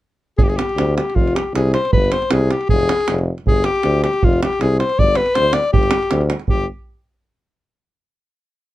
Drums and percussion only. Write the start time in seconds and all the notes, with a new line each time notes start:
0.38 davul low
0.50 davul high
0.59 davul high
0.69 davul high
0.78 davul high
0.98 davul high
1.10 davul high
1.16 davul low
1.28 davul high
1.36 davul high
1.55 davul high
1.74 davul high
1.85 davul high
1.93 davul low
2.05 davul high
2.12 davul high
2.22 davul high
2.31 davul high
2.51 davul high
2.61 davul high
2.69 davul low
2.80 davul high
2.89 davul high
3.01 davul high
3.08 davul high
3.18 davul high
3.38 davul high
3.47 davul low
3.57 davul high
3.64 davul high
3.76 davul high
3.83 davul high
4.04 davul high
4.13 davul high
4.23 davul low
4.33 davul high
4.43 davul high
4.53 davul high
4.61 davul high
4.80 davul high
4.89 davul high
4.99 davul low
5.07 davul high
5.15 davul high
5.26 davul high
5.35 davul high
5.53 davul high
5.64 davul high
5.74 davul low
5.83 davul high
5.91 davul high
6.03 davul high
6.11 davul high
6.21 davul high
6.30 davul high
6.40 davul high
6.48 davul low